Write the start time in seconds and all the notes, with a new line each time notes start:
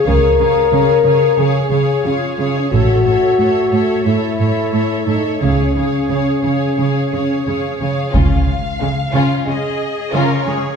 0.03 C#2 C#3 G#4 C#5 F5
0.07 A#4
0.37 C#3 G#4 F5
0.41 C#5
0.70 C#3 G#4 C#5 F5
1.04 C#3 G#4 C#5 F5
1.38 C#3 G#4 C#5 F5
1.70 C#3 G#4 C#5 F5
2.03 C#3 F4 G#4 C#5 F5
2.37 C#3 G#4 C#5 F5
2.58 C#4
2.71 A1 A2 F#4 A4 C#5 E5
3.05 A2 A4 C#5 E5
3.38 A2 A4 C#5 E5
3.71 A2 A4 C#5 E5
4.04 A2 E4 A4 C#5 E5
4.38 A2 A4 C#5 E5
4.72 A2 A4 C#5 E5
5.05 A2 D#4 A4 C#5 E5
5.41 C#2 C#3 C#4 G#4 C#5 F5
5.75 C#3 G#4 C#5 F5
6.09 C#3 G#4 C#5 F5
6.43 C#3 G#4 C#5 F5
6.77 C#3 G#4 C#5 F5
7.11 C#3 G#4 C#5 F5
7.45 C#3 G#4 C#5 F5
7.79 C#3 G#4 C#5 F5
8.12 C#2 C#3 C#4 F4 F5, taiko
8.80 C#3 G#3
9.13 C#3 C#4 F4
9.45 C#3 G#3 C#4 G#4 D#5
10.12 C#3 C#4 F4 A#4 C#5
10.46 C#3 G#3 C#4 G#4